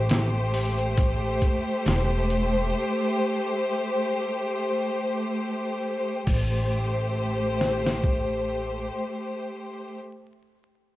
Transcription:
0, 0, Header, 1, 4, 480
1, 0, Start_track
1, 0, Key_signature, 0, "minor"
1, 0, Tempo, 882353
1, 1491, Time_signature, 4, 2, 24, 8
1, 5962, End_track
2, 0, Start_track
2, 0, Title_t, "String section"
2, 0, Program_c, 0, 48
2, 0, Note_on_c, 0, 57, 77
2, 0, Note_on_c, 0, 67, 72
2, 0, Note_on_c, 0, 72, 81
2, 3389, Note_off_c, 0, 57, 0
2, 3389, Note_off_c, 0, 72, 0
2, 3390, Note_off_c, 0, 67, 0
2, 3407, Note_on_c, 0, 67, 60
2, 3408, Note_on_c, 0, 57, 66
2, 3410, Note_on_c, 0, 72, 74
2, 5428, Note_off_c, 0, 67, 0
2, 5429, Note_off_c, 0, 57, 0
2, 5431, Note_off_c, 0, 72, 0
2, 5962, End_track
3, 0, Start_track
3, 0, Title_t, "Upright bass"
3, 0, Program_c, 1, 32
3, 0, Note_on_c, 1, 33, 99
3, 752, Note_off_c, 1, 33, 0
3, 1013, Note_on_c, 1, 28, 85
3, 1472, Note_off_c, 1, 28, 0
3, 3412, Note_on_c, 1, 33, 80
3, 4829, Note_off_c, 1, 33, 0
3, 5962, End_track
4, 0, Start_track
4, 0, Title_t, "Drums"
4, 50, Note_on_c, 9, 42, 88
4, 60, Note_on_c, 9, 38, 115
4, 105, Note_off_c, 9, 42, 0
4, 115, Note_off_c, 9, 38, 0
4, 292, Note_on_c, 9, 46, 72
4, 347, Note_off_c, 9, 46, 0
4, 429, Note_on_c, 9, 42, 39
4, 483, Note_off_c, 9, 42, 0
4, 529, Note_on_c, 9, 42, 88
4, 531, Note_on_c, 9, 36, 102
4, 584, Note_off_c, 9, 42, 0
4, 586, Note_off_c, 9, 36, 0
4, 771, Note_on_c, 9, 42, 55
4, 772, Note_on_c, 9, 36, 76
4, 826, Note_off_c, 9, 42, 0
4, 827, Note_off_c, 9, 36, 0
4, 1012, Note_on_c, 9, 42, 76
4, 1022, Note_on_c, 9, 38, 104
4, 1067, Note_off_c, 9, 42, 0
4, 1076, Note_off_c, 9, 38, 0
4, 1253, Note_on_c, 9, 42, 60
4, 1307, Note_off_c, 9, 42, 0
4, 3410, Note_on_c, 9, 49, 77
4, 3412, Note_on_c, 9, 36, 97
4, 3464, Note_off_c, 9, 49, 0
4, 3466, Note_off_c, 9, 36, 0
4, 4140, Note_on_c, 9, 38, 52
4, 4194, Note_off_c, 9, 38, 0
4, 4278, Note_on_c, 9, 38, 60
4, 4332, Note_off_c, 9, 38, 0
4, 4372, Note_on_c, 9, 36, 85
4, 4426, Note_off_c, 9, 36, 0
4, 5962, End_track
0, 0, End_of_file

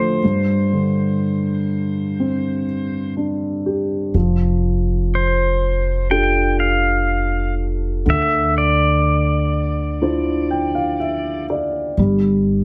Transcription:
0, 0, Header, 1, 4, 480
1, 0, Start_track
1, 0, Tempo, 978793
1, 113, Time_signature, 4, 2, 24, 8
1, 6200, End_track
2, 0, Start_track
2, 0, Title_t, "Pedal steel guitar"
2, 0, Program_c, 0, 26
2, 0, Note_on_c, 0, 72, 64
2, 1539, Note_off_c, 0, 72, 0
2, 2526, Note_on_c, 0, 72, 55
2, 2982, Note_off_c, 0, 72, 0
2, 2997, Note_on_c, 0, 79, 72
2, 3234, Note_off_c, 0, 79, 0
2, 3236, Note_on_c, 0, 77, 64
2, 3697, Note_off_c, 0, 77, 0
2, 3972, Note_on_c, 0, 76, 83
2, 4188, Note_off_c, 0, 76, 0
2, 4207, Note_on_c, 0, 74, 67
2, 5620, Note_off_c, 0, 74, 0
2, 6200, End_track
3, 0, Start_track
3, 0, Title_t, "Grand piano"
3, 0, Program_c, 1, 0
3, 0, Control_c, 1, 64, 127
3, 0, Note_on_c, 1, 38, 50
3, 0, Note_on_c, 1, 50, 40
3, 0, Note_on_c, 1, 53, 45
3, 0, Note_on_c, 1, 57, 42
3, 94, Note_off_c, 1, 50, 0
3, 97, Note_off_c, 1, 38, 0
3, 102, Note_off_c, 1, 53, 0
3, 107, Note_off_c, 1, 57, 0
3, 118, Note_on_c, 1, 43, 46
3, 120, Control_c, 1, 64, 0
3, 199, Control_c, 1, 64, 127
3, 357, Note_on_c, 1, 50, 37
3, 1077, Note_on_c, 1, 60, 38
3, 1296, Note_off_c, 1, 50, 0
3, 1553, Note_on_c, 1, 62, 41
3, 1795, Note_on_c, 1, 67, 38
3, 2018, Note_off_c, 1, 43, 0
3, 2018, Note_off_c, 1, 60, 0
3, 2021, Note_off_c, 1, 62, 0
3, 2028, Note_off_c, 1, 67, 0
3, 2034, Note_on_c, 1, 53, 46
3, 2041, Control_c, 1, 64, 0
3, 2128, Control_c, 1, 64, 127
3, 2991, Note_on_c, 1, 62, 35
3, 2994, Note_on_c, 1, 65, 34
3, 2996, Note_on_c, 1, 67, 34
3, 2996, Note_on_c, 1, 69, 42
3, 3934, Note_off_c, 1, 62, 0
3, 3935, Note_off_c, 1, 65, 0
3, 3936, Note_off_c, 1, 53, 0
3, 3936, Note_off_c, 1, 67, 0
3, 3936, Note_off_c, 1, 69, 0
3, 3950, Note_on_c, 1, 50, 52
3, 3963, Control_c, 1, 64, 0
3, 4052, Control_c, 1, 64, 127
3, 4911, Note_on_c, 1, 62, 36
3, 4911, Note_on_c, 1, 64, 33
3, 4914, Note_on_c, 1, 65, 34
3, 4916, Note_on_c, 1, 72, 42
3, 5152, Note_on_c, 1, 79, 54
3, 5265, Note_off_c, 1, 79, 0
3, 5272, Note_on_c, 1, 77, 56
3, 5384, Note_off_c, 1, 77, 0
3, 5394, Note_on_c, 1, 76, 55
3, 5617, Note_off_c, 1, 76, 0
3, 5639, Note_on_c, 1, 74, 54
3, 5851, Note_off_c, 1, 50, 0
3, 5852, Note_off_c, 1, 62, 0
3, 5852, Note_off_c, 1, 64, 0
3, 5854, Note_off_c, 1, 65, 0
3, 5855, Note_off_c, 1, 72, 0
3, 5860, Note_off_c, 1, 74, 0
3, 5880, Control_c, 1, 64, 0
3, 5881, Note_on_c, 1, 55, 56
3, 5966, Control_c, 1, 64, 127
3, 6200, Note_off_c, 1, 55, 0
3, 6200, End_track
4, 0, Start_track
4, 0, Title_t, "Upright bass"
4, 0, Program_c, 2, 32
4, 2031, Note_on_c, 2, 29, 60
4, 3934, Note_off_c, 2, 29, 0
4, 3952, Note_on_c, 2, 38, 61
4, 5852, Note_off_c, 2, 38, 0
4, 5872, Note_on_c, 2, 31, 65
4, 6200, Note_off_c, 2, 31, 0
4, 6200, End_track
0, 0, End_of_file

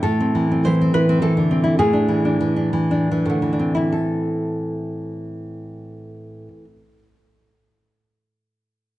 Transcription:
0, 0, Header, 1, 2, 480
1, 0, Start_track
1, 0, Key_signature, 0, "minor"
1, 0, Tempo, 606673
1, 28, Time_signature, 3, 2, 24, 8
1, 507, Tempo, 566572
1, 1467, Tempo, 614754
1, 1947, Tempo, 700117
1, 2427, Tempo, 834492
1, 2907, Tempo, 752823
1, 4827, Tempo, 792602
1, 6066, End_track
2, 0, Start_track
2, 0, Title_t, "Nylon-string guitar"
2, 0, Program_c, 0, 24
2, 21, Note_on_c, 0, 69, 69
2, 28, Note_on_c, 0, 45, 52
2, 162, Note_on_c, 0, 60, 48
2, 276, Note_on_c, 0, 52, 38
2, 398, Note_off_c, 0, 60, 0
2, 407, Note_on_c, 0, 60, 37
2, 485, Note_off_c, 0, 69, 0
2, 513, Note_on_c, 0, 72, 70
2, 518, Note_off_c, 0, 52, 0
2, 528, Note_on_c, 0, 52, 46
2, 644, Note_off_c, 0, 60, 0
2, 654, Note_on_c, 0, 60, 41
2, 739, Note_off_c, 0, 72, 0
2, 754, Note_off_c, 0, 52, 0
2, 760, Note_on_c, 0, 71, 75
2, 764, Note_on_c, 0, 52, 47
2, 878, Note_off_c, 0, 60, 0
2, 888, Note_on_c, 0, 60, 45
2, 978, Note_off_c, 0, 71, 0
2, 990, Note_off_c, 0, 52, 0
2, 996, Note_on_c, 0, 69, 74
2, 1000, Note_on_c, 0, 52, 51
2, 1122, Note_off_c, 0, 60, 0
2, 1125, Note_on_c, 0, 50, 41
2, 1242, Note_on_c, 0, 60, 48
2, 1351, Note_on_c, 0, 64, 49
2, 1433, Note_off_c, 0, 45, 0
2, 1456, Note_off_c, 0, 69, 0
2, 1471, Note_off_c, 0, 64, 0
2, 1476, Note_off_c, 0, 52, 0
2, 1478, Note_off_c, 0, 60, 0
2, 1478, Note_on_c, 0, 45, 61
2, 1479, Note_on_c, 0, 68, 66
2, 1480, Note_off_c, 0, 50, 0
2, 1591, Note_on_c, 0, 62, 46
2, 1710, Note_on_c, 0, 52, 39
2, 1829, Note_off_c, 0, 62, 0
2, 1839, Note_on_c, 0, 62, 43
2, 1950, Note_off_c, 0, 52, 0
2, 1959, Note_on_c, 0, 52, 49
2, 2059, Note_off_c, 0, 62, 0
2, 2067, Note_on_c, 0, 62, 41
2, 2172, Note_off_c, 0, 52, 0
2, 2181, Note_on_c, 0, 52, 46
2, 2296, Note_off_c, 0, 62, 0
2, 2304, Note_on_c, 0, 62, 51
2, 2435, Note_off_c, 0, 52, 0
2, 2442, Note_on_c, 0, 52, 46
2, 2516, Note_off_c, 0, 45, 0
2, 2523, Note_on_c, 0, 45, 47
2, 2546, Note_on_c, 0, 50, 36
2, 2612, Note_off_c, 0, 52, 0
2, 2618, Note_on_c, 0, 52, 34
2, 2672, Note_off_c, 0, 62, 0
2, 2679, Note_on_c, 0, 62, 39
2, 2717, Note_on_c, 0, 60, 33
2, 2803, Note_off_c, 0, 68, 0
2, 2806, Note_on_c, 0, 64, 42
2, 2814, Note_off_c, 0, 62, 0
2, 2816, Note_off_c, 0, 64, 0
2, 2816, Note_on_c, 0, 64, 36
2, 2908, Note_off_c, 0, 50, 0
2, 2908, Note_on_c, 0, 69, 40
2, 4536, Note_off_c, 0, 45, 0
2, 4642, Note_off_c, 0, 52, 0
2, 4752, Note_off_c, 0, 60, 0
2, 4860, Note_off_c, 0, 64, 0
2, 4956, Note_off_c, 0, 69, 0
2, 6066, End_track
0, 0, End_of_file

